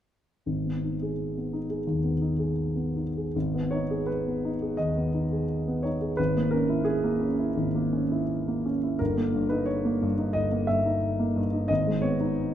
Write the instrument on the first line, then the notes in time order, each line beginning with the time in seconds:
grand piano
0.46 G#1
0.66 B3
0.84 D#4
1.02 G#4
1.37 B3
1.53 D#4
1.70 G#4
1.87 D#2
2.04 B3
2.22 D#4
2.39 G#4
2.76 B3
2.97 D#4
3.17 G#4
3.36 G#1
3.55 B3
3.71 D#4 C#5
3.91 G#4
4.07 B4
4.27 B3
4.45 D#4
4.62 G#4
4.77 D#2 D#5
4.97 B3
5.15 D#4
5.32 G#4
5.68 B3
5.83 D#4 C#5
6.01 G#4
6.17 G#1 B4
6.37 A#3
6.51 C#4 A#4
6.69 E4
6.85 G#4
7.04 A#3
7.21 C#4
7.39 E4
7.57 G#1
7.75 A#3
7.93 C#4
8.12 E4
8.48 A#3
8.66 C#4
8.84 E4
8.99 G1 A#4
9.17 A#3
9.35 G2
9.49 D#4 B4
9.66 C#5
9.85 A#3
10.02 G2
10.19 D#4
10.33 G1 D#5
10.52 A#3
10.67 G2 E5
10.86 D#4
11.19 A#3
11.36 G2
11.53 D#4
11.68 G#1 D#5
11.87 G#3
12.02 B3 C#5
12.21 D#4